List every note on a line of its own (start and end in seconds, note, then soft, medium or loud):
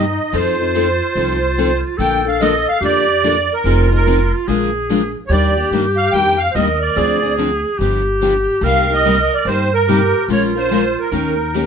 0.00 0.16 G2 medium
0.00 0.34 D#4 medium
0.00 0.36 D#5 medium
0.33 0.99 F2 medium
0.33 0.54 F3 medium
0.33 0.55 C4 medium
0.33 0.55 D#4 medium
0.33 1.99 F4 medium
0.33 0.55 A4 medium
0.33 1.81 C5 medium
0.60 0.74 C4 soft
0.60 0.74 D#4 soft
0.60 0.74 A4 medium
0.75 0.86 F3 medium
0.75 0.86 C4 medium
0.75 0.87 D#4 medium
0.75 0.87 A4 medium
1.15 1.82 C2 medium
1.15 1.38 F3 medium
1.15 1.38 C4 medium
1.15 1.38 D#4 medium
1.15 1.38 A4 medium
1.58 1.69 F3 medium
1.58 1.69 C4 medium
1.58 1.70 D#4 medium
1.58 1.70 A4 medium
1.98 2.65 A#1 medium
1.98 2.21 D3 medium
1.98 2.21 F3 medium
1.98 2.21 A#3 medium
1.98 2.21 D4 medium
1.98 2.80 A4 loud
1.98 2.22 A4 medium
1.98 2.25 G5 medium
2.25 2.41 A#3 soft
2.25 2.40 D4 soft
2.25 2.40 A4 medium
2.25 2.41 F5 medium
2.41 2.52 D3 medium
2.41 2.52 F3 medium
2.41 2.53 A#3 medium
2.41 2.53 D4 medium
2.41 2.53 A4 medium
2.41 2.68 D#5 medium
2.69 2.83 F5 medium
2.80 3.47 F2 medium
2.80 3.03 D3 medium
2.80 3.04 F3 medium
2.80 3.04 A#3 medium
2.80 3.04 D4 medium
2.80 3.37 G4 loud
2.80 3.04 A4 medium
2.85 3.53 D5 medium
3.23 3.35 D3 medium
3.23 3.35 F3 medium
3.23 3.35 A#3 medium
3.23 3.35 D4 medium
3.23 3.36 A4 medium
3.53 3.90 A#4 medium
3.64 4.31 F1 medium
3.64 3.86 F3 medium
3.64 3.87 C4 medium
3.64 3.87 D#4 medium
3.64 4.49 F4 medium
3.64 3.87 G#4 medium
3.91 4.06 C4 soft
3.91 4.05 D#4 soft
3.91 4.05 G#4 soft
3.96 4.32 A#4 medium
4.06 4.18 F3 medium
4.06 4.18 C4 medium
4.06 4.18 D#4 medium
4.06 4.18 G#4 medium
4.48 5.14 A#1 medium
4.48 4.69 D3 medium
4.48 4.69 F3 medium
4.48 4.69 G#3 medium
4.48 4.69 A#3 medium
4.48 4.70 D4 medium
4.48 4.70 F4 medium
4.48 5.15 G#4 medium
4.48 4.70 G#4 medium
4.48 4.70 A#4 medium
4.90 5.01 D3 medium
4.90 5.01 F3 medium
4.90 5.01 G#3 medium
4.90 5.01 A#3 medium
4.90 5.01 D4 medium
4.90 5.01 F4 medium
4.90 5.02 G#4 medium
4.90 5.02 A#4 medium
5.27 5.63 D#2 medium
5.27 6.45 G4 medium
5.27 5.31 C#5 medium
5.31 5.52 D#3 medium
5.31 5.53 G3 medium
5.31 5.53 A#3 medium
5.31 5.53 D4 medium
5.31 5.53 G4 medium
5.31 5.70 D5 medium
5.58 5.72 A#3 soft
5.58 5.72 D4 soft
5.58 5.72 G4 medium
5.71 6.07 G2 medium
5.71 5.83 D#3 medium
5.71 5.84 G3 medium
5.71 5.84 A#3 medium
5.71 5.84 D4 medium
5.71 5.84 G4 medium
5.97 6.13 F5 medium
6.12 6.48 F2 medium
6.12 6.35 D#3 medium
6.12 6.35 G3 soft
6.12 6.36 A#3 medium
6.12 6.36 D4 medium
6.12 6.36 G4 medium
6.12 6.40 G5 medium
6.37 6.54 F5 medium
6.51 6.57 C5 medium
6.51 6.79 D#5 medium
6.55 6.90 D#2 medium
6.55 6.66 D#3 medium
6.55 6.67 G3 medium
6.55 6.67 A#3 medium
6.55 6.67 D4 medium
6.55 6.67 G4 medium
6.55 6.99 A#4 medium
6.81 7.34 D5 medium
6.96 7.63 D2 medium
6.96 7.18 D3 medium
6.96 7.18 F3 medium
6.96 7.18 C4 medium
6.96 7.18 D4 medium
6.96 7.18 G#4 medium
6.96 7.80 G#4 loud
7.23 7.37 C4 soft
7.23 7.38 D4 soft
7.23 7.37 G#4 soft
7.38 7.49 D3 medium
7.38 7.49 F3 medium
7.38 7.50 C4 medium
7.38 7.50 D4 medium
7.38 7.50 G#4 medium
7.78 8.45 G1 medium
7.78 8.02 D3 medium
7.78 8.02 F3 medium
7.78 8.02 B3 medium
7.78 8.02 D4 medium
7.78 8.65 G4 medium
7.78 8.02 G4 medium
8.21 8.33 D3 medium
8.21 8.33 F3 medium
8.21 8.33 B3 medium
8.21 8.33 D4 medium
8.21 8.33 G4 medium
8.61 9.28 C2 medium
8.61 8.84 C3 medium
8.61 8.84 G3 medium
8.61 8.84 A#3 medium
8.61 8.85 D#4 medium
8.61 8.85 G4 medium
8.61 9.64 A#4 loud
8.66 8.93 F5 medium
8.89 9.05 A#3 soft
8.89 9.04 D#4 soft
8.89 9.04 G4 medium
8.94 9.35 D#5 medium
9.05 9.16 C3 medium
9.05 9.16 G3 medium
9.05 9.16 A#3 medium
9.05 9.17 D#4 medium
9.05 9.17 G4 medium
9.34 9.47 D5 medium
9.45 10.12 G2 medium
9.45 9.68 C3 medium
9.45 9.68 G3 medium
9.45 9.68 A#3 medium
9.45 9.68 D#4 medium
9.45 9.68 G4 medium
9.45 9.73 C5 medium
9.74 10.25 A#4 medium
9.88 9.99 C3 medium
9.88 9.99 G3 medium
9.88 10.00 A#3 medium
9.88 10.00 D#4 medium
9.88 10.31 G4 medium
9.88 10.00 G4 medium
10.28 10.95 A#1 medium
10.28 10.50 F3 medium
10.28 10.51 G#3 medium
10.28 10.51 C#4 medium
10.28 11.11 F4 medium
10.28 10.51 F4 medium
10.28 10.51 A#4 medium
10.28 10.43 C#5 medium
10.55 10.70 C#4 soft
10.55 10.70 F4 soft
10.55 10.70 A#4 medium
10.55 10.99 C5 medium
10.71 10.82 F3 medium
10.71 10.82 G#3 medium
10.71 10.82 C#4 medium
10.71 10.82 F4 medium
10.71 10.82 A#4 medium
10.99 11.66 A#4 medium
11.12 11.66 D#2 medium
11.12 11.34 D#3 medium
11.12 11.34 A#3 medium
11.12 11.34 C#4 medium
11.12 11.66 D#4 medium
11.12 11.34 G4 medium
11.12 11.34 A#4 medium
11.55 11.65 D#3 medium
11.55 11.66 A#3 medium
11.55 11.66 C#4 medium
11.55 11.66 G4 medium
11.55 11.66 A#4 medium